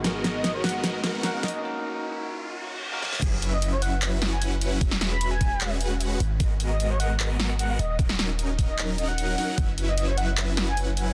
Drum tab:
CC |--------------------------------|--------------------------------|x-------------------------------|--------------------------------|
HH |x---x---x---ox--x---x---x---xx--|--------------------------------|x---x---x---x---x---x---x---x---|x---x---x---x---x---x---x---x---|
CP |--------------------------------|--------------------------------|----------------x---------------|----------------x---------------|
SD |o---o---o---o---o---o---o---o---|----------------------------o-o-|--------------------o-----------|--o-o---------------------------|
BD |--------------------------------|--------------------------------|o-------------------------------|o-----------o-------------------|

CC |--------------------------------|--------------------------------|--------------------------------|
HH |x---x---x---x---x---x---x---x---|x---x---x---x---x---x---x---o---|x---x---x---x---x---x---x---x---|
CP |----------------x---------------|----------------x---------------|----------------x---------------|
SD |--------------------o-----------|--o-o---------------------------|--------------------o-----------|
BD |o-------------------------------|o-----------o-------------------|o-------------------------------|